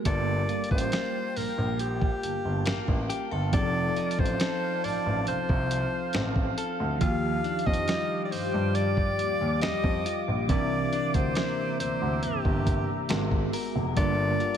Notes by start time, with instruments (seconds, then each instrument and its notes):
0.04 grand piano G1, tine electric piano G3 A#3 F4, clean electric guitar G3 A4, alto saxophone D5, ambient pad F5 G5 A5, kick, closed hi-hat
0.08 tine electric piano A#4
0.49 clean electric guitar F4, closed hi-hat
0.64 closed hi-hat
0.71 grand piano A1, alto saxophone C5, kick
0.78 closed hi-hat
0.92 clean electric guitar A#3 F4, snare, closed hi-hat
1.36 grand piano A#1, alto saxophone A#4, open hi-hat
1.58 grand piano A#1
1.79 alto saxophone G4, closed hi-hat
2.01 kick
2.23 grand piano G1, closed hi-hat
2.45 grand piano G1
2.66 grand piano A1, clean electric guitar A#3, snare, closed hi-hat
2.88 grand piano A1, kick
3.10 clean electric guitar G4, closed hi-hat
3.31 grand piano G1, clean electric guitar A4
3.51 grand piano F1, tine electric piano F3 C4 D#4, clean electric guitar F3 A4, alto saxophone D5, kick, closed hi-hat
3.56 tine electric piano G#4
3.63 tine electric piano A4
3.96 clean electric guitar D#4, closed hi-hat
4.11 closed hi-hat
4.19 grand piano A1, alto saxophone C5, kick
4.26 closed hi-hat
4.40 clean electric guitar C4 D#4 A4, snare, closed hi-hat
4.84 grand piano A1, alto saxophone D5, open hi-hat
5.06 grand piano A1
5.27 grand piano C2, alto saxophone C5, closed hi-hat
5.49 grand piano C2, kick
5.71 closed hi-hat
6.13 grand piano A1, clean electric guitar C4, snare, closed hi-hat
6.36 kick
6.58 clean electric guitar A4, closed hi-hat
6.80 grand piano D2
6.99 grand piano D#2, clean electric guitar D#3 F4, tine electric piano F3 D#4 F4, ambient pad G4 D6, alto saxophone F5, kick, closed hi-hat
7.04 tine electric piano F#4
7.10 tine electric piano G4
7.44 clean electric guitar D4, closed hi-hat
7.59 closed hi-hat
7.66 grand piano F2, alto saxophone D#5, kick
7.74 closed hi-hat
7.88 clean electric guitar G3 F4, snare, closed hi-hat
8.25 alto saxophone D5
8.32 grand piano G2, alto saxophone C5, open hi-hat
8.54 grand piano G2
8.75 alto saxophone D5, closed hi-hat
8.97 kick
9.19 grand piano D#2, closed hi-hat
9.41 grand piano D#2
9.61 grand piano F2, clean electric guitar G3, alto saxophone D#5, snare, closed hi-hat
9.84 grand piano F2, kick
10.06 clean electric guitar F4, closed hi-hat
10.28 grand piano A#1
10.47 grand piano C2, clean electric guitar C3 E4, tine electric piano E3 C4 D4, alto saxophone D5, ambient pad E5 A#5, kick, closed hi-hat
10.51 tine electric piano A#4
10.93 clean electric guitar D4, closed hi-hat
11.14 grand piano D2, alto saxophone C5, kick, closed hi-hat
11.35 clean electric guitar A#3 D4 E4, snare, closed hi-hat
11.80 grand piano D2, alto saxophone C5, closed hi-hat
12.02 grand piano D2
12.23 grand piano G1, alto saxophone G4, closed hi-hat
12.45 grand piano G1, kick
12.66 kick, closed hi-hat
13.09 grand piano G#1, tine electric piano G#3 B3 F#4 A#4, clean electric guitar G#3, ambient pad F#5 G#5, snare, closed hi-hat
13.31 kick
13.53 clean electric guitar A#4, open hi-hat
13.76 grand piano F1
13.95 grand piano G1, tine electric piano G3 A#3 D4 F4, clean electric guitar G3 A4, alto saxophone D5, ambient pad F5 G5 A5, kick, closed hi-hat
13.99 tine electric piano A#4
14.40 clean electric guitar F4, closed hi-hat